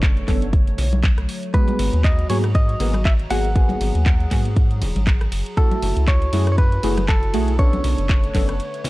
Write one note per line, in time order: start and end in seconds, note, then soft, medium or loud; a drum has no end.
0.00 0.23 F#1 medium
0.00 1.52 D3 medium
0.00 5.53 F#3 medium
0.00 1.50 A3 medium
0.00 0.25 B3 loud
0.00 0.25 C#4 medium
0.00 0.25 D4 medium
0.00 0.25 A4 loud
0.00 1.52 C#5 medium
0.00 kick loud
0.00 clap loud
0.00 closed hi-hat medium
0.17 closed hi-hat soft
0.28 0.74 F#1 medium
0.28 0.46 B3 medium
0.28 0.46 C#4 medium
0.28 0.46 D4 medium
0.28 0.46 A4 medium
0.28 kick medium
0.28 clap soft
0.28 open hi-hat loud
0.28 high conga medium
0.42 closed hi-hat medium
0.53 kick loud
0.53 closed hi-hat medium
0.67 closed hi-hat soft
0.78 1.12 B1 medium
0.78 open hi-hat loud
0.78 low conga medium
0.93 closed hi-hat soft
0.93 high conga medium
1.03 kick loud
1.03 clap loud
1.03 closed hi-hat medium
1.18 1.26 B1 medium
1.18 cross-stick medium
1.18 closed hi-hat soft
1.29 open hi-hat loud
1.43 closed hi-hat medium
1.53 2.27 G#3 loud
1.53 2.27 B3 medium
1.53 3.54 F#4 medium
1.53 2.27 F#4 medium
1.53 2.27 G#4 loud
1.53 2.04 B4 medium
1.53 5.53 A#5 medium
1.53 kick loud
1.53 closed hi-hat medium
1.68 closed hi-hat soft
1.68 high conga medium
1.79 1.90 G#1 loud
1.79 open hi-hat loud
1.79 ride medium
1.79 low conga medium
1.93 2.25 D#2 medium
1.93 closed hi-hat medium
2.04 2.29 D#5 medium
2.04 kick loud
2.04 clap loud
2.04 closed hi-hat medium
2.19 closed hi-hat soft
2.29 2.75 G#2 medium
2.29 2.42 A#3 loud
2.29 2.42 B3 medium
2.29 2.42 F#4 medium
2.29 2.42 G#4 loud
2.29 2.37 C#5 medium
2.29 open hi-hat loud
2.29 ride medium
2.29 high conga medium
2.44 cross-stick medium
2.44 closed hi-hat medium
2.55 3.05 D#5 loud
2.55 kick loud
2.55 closed hi-hat medium
2.69 closed hi-hat soft
2.80 3.26 G#1 loud
2.80 2.92 A#3 loud
2.80 2.92 B3 medium
2.80 2.92 F#4 medium
2.80 2.92 G#4 loud
2.80 open hi-hat loud
2.80 ride medium
2.80 low conga medium
2.94 cross-stick medium
2.94 closed hi-hat medium
2.94 high conga medium
3.05 3.12 E5 loud
3.05 kick loud
3.05 clap loud
3.05 closed hi-hat medium
3.19 closed hi-hat soft
3.30 3.76 G#1 medium
3.30 3.49 A#3 loud
3.30 3.49 B3 medium
3.30 3.49 F#4 medium
3.30 3.49 G#4 loud
3.30 5.28 F#5 loud
3.30 open hi-hat medium
3.30 ride medium
3.45 closed hi-hat medium
3.55 4.28 A#3 medium
3.55 4.29 B3 medium
3.55 4.29 F#4 medium
3.55 5.55 G#4 medium
3.55 4.29 G#4 loud
3.55 kick loud
3.55 closed hi-hat medium
3.69 closed hi-hat soft
3.69 high conga medium
3.81 3.91 G#1 loud
3.81 open hi-hat loud
3.81 ride medium
3.81 low conga medium
3.95 4.27 D#2 medium
3.95 closed hi-hat medium
4.06 kick loud
4.06 clap loud
4.06 closed hi-hat medium
4.20 closed hi-hat soft
4.31 4.83 G#2 medium
4.31 4.50 A#3 medium
4.31 4.50 B3 medium
4.31 4.50 F#4 medium
4.31 4.50 G#4 medium
4.31 kick medium
4.31 clap soft
4.31 open hi-hat medium
4.31 ride medium
4.31 high conga medium
4.45 closed hi-hat medium
4.56 kick loud
4.56 closed hi-hat medium
4.71 closed hi-hat soft
4.82 4.92 D#1 loud
4.82 open hi-hat loud
4.82 ride medium
4.82 low conga medium
4.96 5.28 G#1 loud
4.96 closed hi-hat medium
4.96 high conga medium
5.07 kick loud
5.07 clap loud
5.07 closed hi-hat medium
5.21 cross-stick medium
5.21 closed hi-hat soft
5.32 5.43 F#1 medium
5.32 open hi-hat medium
5.32 ride medium
5.46 closed hi-hat medium
5.57 6.30 A3 loud
5.57 6.30 E4 medium
5.57 7.57 E4 medium
5.57 7.57 F#4 medium
5.57 6.30 F#4 medium
5.57 6.04 A4 medium
5.57 6.31 A4 loud
5.57 kick loud
5.57 closed hi-hat medium
5.71 closed hi-hat soft
5.71 high conga medium
5.82 5.93 F#1 loud
5.82 open hi-hat loud
5.82 ride medium
5.82 low conga medium
5.97 6.28 C#2 medium
5.97 closed hi-hat medium
6.08 6.51 C#5 loud
6.08 kick loud
6.08 clap loud
6.08 closed hi-hat medium
6.22 closed hi-hat soft
6.33 6.79 F#2 medium
6.33 6.45 A3 loud
6.33 6.45 E4 medium
6.33 6.45 F#4 medium
6.33 6.45 G#4 loud
6.33 open hi-hat medium
6.33 ride medium
6.33 high conga medium
6.47 cross-stick medium
6.47 closed hi-hat medium
6.52 6.58 C#5 medium
6.58 7.08 B4 loud
6.58 kick loud
6.58 closed hi-hat medium
6.72 closed hi-hat soft
6.83 7.35 F#1 loud
6.83 6.96 A3 loud
6.83 6.96 E4 medium
6.83 6.96 F#4 medium
6.83 6.96 G#4 loud
6.83 open hi-hat loud
6.83 ride medium
6.83 low conga medium
6.98 cross-stick medium
6.98 closed hi-hat medium
6.98 high conga medium
7.09 7.59 A4 medium
7.09 kick loud
7.09 clap loud
7.09 closed hi-hat medium
7.23 closed hi-hat soft
7.33 7.80 B1 medium
7.33 7.52 A3 loud
7.33 7.52 E4 medium
7.33 7.52 F#4 medium
7.33 7.52 G#4 loud
7.33 open hi-hat medium
7.33 ride medium
7.48 closed hi-hat medium
7.58 8.90 D3 medium
7.58 8.90 A3 medium
7.58 8.32 B3 medium
7.58 8.32 C#4 medium
7.58 8.32 D4 medium
7.58 8.32 A4 loud
7.58 8.90 B4 medium
7.58 8.90 C#5 loud
7.58 8.90 C#5 medium
7.58 kick loud
7.58 closed hi-hat medium
7.73 closed hi-hat soft
7.73 high conga medium
7.84 7.95 B1 loud
7.84 open hi-hat loud
7.84 ride medium
7.84 low conga medium
7.98 8.30 F#1 medium
7.98 closed hi-hat medium
8.09 kick loud
8.09 clap loud
8.09 closed hi-hat medium
8.24 closed hi-hat soft
8.34 8.60 F#1 medium
8.34 8.53 B3 medium
8.34 8.53 C#4 medium
8.34 8.53 D4 medium
8.34 8.53 A4 medium
8.34 kick medium
8.34 clap soft
8.34 open hi-hat medium
8.34 ride medium
8.34 high conga medium
8.49 cross-stick medium
8.49 closed hi-hat medium
8.60 closed hi-hat medium
8.74 closed hi-hat soft
8.84 open hi-hat loud
8.84 ride medium
8.84 low conga loud